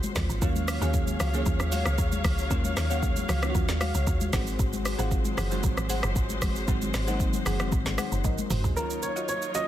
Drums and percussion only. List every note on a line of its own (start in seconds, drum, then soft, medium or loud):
0.03 high conga medium
0.03 shaker medium
0.15 kick medium
0.15 cross-stick medium
0.15 snare medium
0.15 open hi-hat medium
0.15 high conga medium
0.15 low conga medium
0.15 shaker medium
0.30 shaker medium
0.42 kick loud
0.42 shaker medium
0.56 high conga medium
0.56 shaker medium
0.68 cross-stick loud
0.68 open hi-hat medium
0.68 shaker medium
0.82 shaker medium
0.94 kick medium
0.94 shaker medium
1.07 high conga medium
1.07 shaker medium
1.20 cross-stick loud
1.20 open hi-hat soft
1.20 low conga medium
1.20 shaker medium
1.34 shaker soft
1.46 kick loud
1.46 low conga medium
1.46 shaker medium
1.60 cross-stick medium
1.60 shaker medium
1.72 open hi-hat medium
1.72 high conga medium
1.72 shaker loud
1.85 cross-stick loud
1.85 shaker medium
1.98 kick medium
1.98 shaker medium
2.12 high conga medium
2.12 shaker medium
2.24 kick medium
2.24 cross-stick loud
2.24 open hi-hat medium
2.24 high conga medium
2.24 low conga medium
2.24 shaker medium
2.38 shaker medium
2.51 kick loud
2.51 shaker medium
2.64 high conga medium
2.64 shaker medium
2.77 cross-stick medium
2.77 snare medium
2.77 open hi-hat medium
2.77 shaker medium
2.91 shaker medium
3.03 kick loud
3.03 shaker medium
3.16 high conga medium
3.16 shaker medium
3.29 cross-stick medium
3.29 open hi-hat soft
3.29 low conga medium
3.29 shaker medium
3.43 cross-stick loud
3.43 shaker soft
3.55 kick loud
3.55 low conga medium
3.55 shaker medium
3.69 snare medium
3.69 shaker medium
3.81 cross-stick loud
3.81 open hi-hat medium
3.81 high conga medium
3.81 shaker medium
3.95 shaker medium
4.07 kick medium
4.07 shaker medium
4.21 high conga medium
4.21 shaker medium
4.33 kick medium
4.33 cross-stick loud
4.33 snare medium
4.33 open hi-hat medium
4.33 high conga medium
4.33 low conga medium
4.33 shaker medium
4.47 shaker medium
4.59 kick loud
4.59 shaker medium
4.73 high conga medium
4.73 shaker medium
4.85 cross-stick medium
4.85 open hi-hat medium
4.85 shaker medium
4.99 shaker medium
5.11 kick loud
5.11 shaker medium
5.25 high conga medium
5.25 shaker medium
5.38 cross-stick loud
5.38 open hi-hat medium
5.38 low conga medium
5.38 shaker medium
5.51 shaker soft
5.63 kick loud
5.63 low conga medium
5.63 shaker medium
5.77 cross-stick medium
5.77 shaker medium
5.90 open hi-hat medium
5.90 high conga medium
5.90 shaker medium
6.03 cross-stick loud
6.03 shaker medium
6.16 kick medium
6.16 shaker medium
6.29 high conga medium
6.29 shaker medium
6.42 kick medium
6.42 cross-stick medium
6.42 open hi-hat medium
6.42 high conga medium
6.42 low conga medium
6.42 shaker medium
6.56 shaker medium
6.68 kick loud
6.68 shaker medium
6.82 high conga medium
6.82 shaker medium
6.94 cross-stick medium
6.94 snare medium
6.94 open hi-hat medium
6.94 shaker medium
7.08 shaker medium
7.20 kick loud
7.20 shaker medium
7.33 high conga medium
7.33 shaker medium
7.46 cross-stick medium
7.46 open hi-hat soft
7.46 low conga medium
7.46 shaker medium
7.60 cross-stick loud
7.60 shaker soft
7.72 kick loud
7.72 low conga medium
7.72 shaker medium
7.86 snare medium
7.86 shaker medium
7.98 cross-stick loud
7.98 open hi-hat medium
7.98 high conga medium
7.98 shaker medium
8.12 shaker medium
8.24 kick medium
8.24 high tom medium
8.24 shaker medium
8.38 high conga medium
8.38 shaker medium
8.50 mid tom loud
8.50 open hi-hat medium
8.50 high conga medium
8.50 low conga medium
8.50 shaker loud
8.64 floor tom loud
8.64 shaker medium
8.77 shaker medium
8.90 shaker medium
9.03 shaker medium
9.16 shaker soft
9.29 shaker medium
9.42 shaker medium
9.55 shaker medium